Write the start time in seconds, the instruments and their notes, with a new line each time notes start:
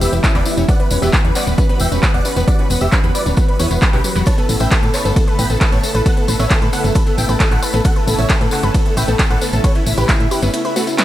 Already playing: analog synth pad E3 G3 B3 G4
0.01 fm bass E1, synth pluck B3, supersaw synth G4 E5, open hi-hat, tambourine
0.12 fm bass E1, synth pluck B3, supersaw synth E4, closed hi-hat, tambourine
0.24 synth pluck C#4, supersaw synth E4, kick, clap, closed hi-hat, tambourine
0.35 fm bass E1, synth pluck B3, supersaw synth B4 D5, clap, closed hi-hat
0.45 synth pluck B3, supersaw synth E4, open hi-hat, tambourine
0.57 fm bass E1, synth pluck C#4, supersaw synth E4, closed hi-hat, tambourine
0.68 synth pluck B3, analog synth pad F#4, supersaw synth D5 F#5, kick, closed hi-hat, tambourine
0.80 synth pluck B3, supersaw synth B4, closed hi-hat
0.91 fm bass E1, synth pluck C#4, supersaw synth B4, open hi-hat, tambourine
1.02 fm bass E1, synth pluck B3, supersaw synth G4 E5, closed hi-hat, tambourine
1.13 supersaw synth B4, kick, clap, closed hi-hat, tambourine
1.24 fm bass E2, synth pluck C#4, supersaw synth B4, closed hi-hat
1.35 synth pluck B3, supersaw synth D5 F#5, clap, open hi-hat, tambourine
1.47 fm bass D1, synth pluck B3, supersaw synth B4, closed hi-hat, tambourine
1.58 synth pluck C#4, supersaw synth B4, kick, closed hi-hat, tambourine
1.69 synth pluck B3, supersaw synth B4, closed hi-hat
1.80 fm bass E1, synth pluck B3, supersaw synth E5 G5, open hi-hat, tambourine
1.92 fm bass E1, synth pluck C#4, supersaw synth B4, closed hi-hat, tambourine
2.03 synth pluck B3, supersaw synth B4, kick, clap, closed hi-hat, tambourine
2.14 fm bass E1, synth pluck B3, supersaw synth D5 F#5, closed hi-hat
2.25 synth pluck C#4, supersaw synth B4, open hi-hat, tambourine
2.36 fm bass E1, synth pluck B3, supersaw synth B4, closed hi-hat, tambourine
2.48 synth pluck B3, supersaw synth D5 F#5, kick, closed hi-hat, tambourine
2.59 synth pluck C#4, supersaw synth B4, closed hi-hat
2.70 fm bass E1, synth pluck B3, supersaw synth B4, open hi-hat, tambourine
2.81 fm bass E1, synth pluck B3, supersaw synth G4 E5, tambourine
2.92 synth pluck C#4, supersaw synth B4, kick, clap, closed hi-hat, tambourine
3.04 fm bass E2, synth pluck B3, supersaw synth B4, closed hi-hat
3.15 synth pluck B3, supersaw synth B4 D5, open hi-hat, tambourine
3.26 fm bass D1, synth pluck C#4, supersaw synth B4, closed hi-hat, tambourine
3.37 synth pluck B3, supersaw synth B4, kick, closed hi-hat, tambourine
3.48 synth pluck B3, supersaw synth B4, closed hi-hat
3.59 fm bass E2, synth pluck B3, supersaw synth E4 C#5, open hi-hat, tambourine
3.71 fm bass E1, synth pluck B3, supersaw synth B4, closed hi-hat, tambourine
3.82 synth pluck A3, supersaw synth B4, kick, clap, closed hi-hat, tambourine
3.93 fm bass B1, synth pluck C#4, supersaw synth G4 B4, clap, closed hi-hat
4.04 synth pluck F#3, supersaw synth B4, open hi-hat, tambourine
4.16 fm bass E1, synth pluck F#3, supersaw synth B4, closed hi-hat, tambourine
4.26 analog synth pad C#3 A3 E4, synth pluck B4, supersaw synth C#5 A5, kick, closed hi-hat, ride, tambourine
4.38 synth pluck B3, supersaw synth A4, closed hi-hat
4.49 fm bass A1, synth pluck B3, supersaw synth A4, open hi-hat, tambourine
4.60 fm bass A1, synth pluck B4, supersaw synth E5 G5, closed hi-hat, tambourine
4.71 synth pluck B3, supersaw synth A4, kick, clap, closed hi-hat, ride, tambourine
4.83 fm bass A2, synth pluck B3, supersaw synth A4, closed hi-hat
4.94 synth pluck B4, supersaw synth C#5 A5, clap, open hi-hat, tambourine
5.05 fm bass G1, synth pluck B3, supersaw synth A4, closed hi-hat, tambourine
5.16 supersaw synth A4, kick, closed hi-hat, ride, tambourine
5.27 supersaw synth A4, synth pluck B4, closed hi-hat
5.39 fm bass A1, synth pluck B3, supersaw synth G5 B5, open hi-hat, tambourine
5.49 fm bass A1, synth pluck B3, supersaw synth A4, closed hi-hat, tambourine
5.61 supersaw synth A4, synth pluck B4, kick, clap, closed hi-hat, ride
5.72 fm bass A1, synth pluck B3, supersaw synth C#5 A5, closed hi-hat
5.83 synth pluck B3, supersaw synth A4, open hi-hat, tambourine
5.95 fm bass A1, supersaw synth A4, synth pluck B4, tambourine
6.06 synth pluck B3, supersaw synth A4 F#5, kick, closed hi-hat, ride, tambourine
6.17 synth pluck B3, supersaw synth A4, closed hi-hat
6.28 fm bass A1, supersaw synth A4, synth pluck B4, open hi-hat, tambourine
6.39 fm bass A1, synth pluck B3, supersaw synth C#5 E5, closed hi-hat, tambourine
6.51 supersaw synth A4, kick, clap, closed hi-hat, ride, tambourine
6.62 fm bass A2, supersaw synth A4, synth pluck B4, closed hi-hat
6.73 synth pluck B3, supersaw synth A4 F#5, open hi-hat, tambourine
6.84 fm bass G1, synth pluck B3, supersaw synth A4, closed hi-hat, tambourine
6.95 supersaw synth A4, synth pluck B4, kick, closed hi-hat, ride, tambourine
7.07 synth pluck B3, supersaw synth A4, closed hi-hat
7.18 fm bass A1, synth pluck B3, supersaw synth E5 G5, open hi-hat, tambourine
7.29 fm bass A1, supersaw synth A4, synth pluck B4, tambourine
7.40 synth pluck B3, supersaw synth A4, kick, clap, closed hi-hat, ride, tambourine
7.51 fm bass A1, synth pluck B3, supersaw synth A4 F#5, clap, closed hi-hat
7.62 supersaw synth A4, synth pluck B4, open hi-hat, tambourine
7.73 fm bass A1, synth pluck B3, supersaw synth A4, closed hi-hat, tambourine
7.84 synth pluck B3, analog synth pad C#4, supersaw synth A4 F#5, kick, closed hi-hat, ride, tambourine
7.96 supersaw synth A4, synth pluck B4, closed hi-hat
8.07 fm bass A1, synth pluck B3, supersaw synth A4, open hi-hat, tambourine
8.18 fm bass A1, synth pluck B3, supersaw synth C#5 E5, closed hi-hat, tambourine
8.29 supersaw synth A4, synth pluck B4, kick, clap, closed hi-hat, ride, tambourine
8.41 fm bass A2, synth pluck B3, supersaw synth A4, closed hi-hat
8.51 synth pluck B3, supersaw synth A4 F#5, clap, open hi-hat, tambourine
8.63 fm bass G1, supersaw synth A4, synth pluck B4, closed hi-hat, tambourine
8.74 synth pluck B3, supersaw synth A4, kick, closed hi-hat, ride, tambourine
8.86 synth pluck B3, supersaw synth A4, closed hi-hat
8.97 fm bass A1, synth pluck B4, supersaw synth E5 G5, open hi-hat, tambourine
9.08 fm bass A1, synth pluck B3, supersaw synth A4, closed hi-hat, tambourine
9.19 supersaw synth A4, kick, clap, closed hi-hat, ride, tambourine
9.30 fm bass A1, supersaw synth A4 F#5, synth pluck B4, closed hi-hat
9.41 synth pluck B3, supersaw synth A4, open hi-hat, tambourine
9.53 fm bass A1, synth pluck B3, supersaw synth A4, closed hi-hat, tambourine
9.64 supersaw synth A4 C#5, synth pluck B4, kick, closed hi-hat, ride, tambourine
9.75 synth pluck B3, supersaw synth E4, closed hi-hat
9.86 fm bass A1, synth pluck B3, supersaw synth E4, open hi-hat, tambourine
9.98 fm bass A1, supersaw synth G4 B4, synth pluck B4, closed hi-hat, tambourine
10.09 synth pluck B3, supersaw synth E4, kick, clap, closed hi-hat, ride, tambourine
10.20 fm bass A2, synth pluck B3, supersaw synth E4, closed hi-hat
10.31 supersaw synth E4 G4, synth pluck B4, open hi-hat, tambourine
10.42 fm bass G1, synth pluck B3, supersaw synth E4, closed hi-hat, tambourine
10.54 synth pluck B3, supersaw synth E4, closed hi-hat, ride, tambourine
10.65 supersaw synth E4, synth pluck B4, closed hi-hat
10.76 supersaw synth A3 F#4, synth pluck B3, open hi-hat, tambourine
10.87 synth pluck B3, supersaw synth E4, closed hi-hat, tambourine
10.98 synth pluck B3, supersaw synth E4, snare, clap, closed hi-hat, ride, tambourine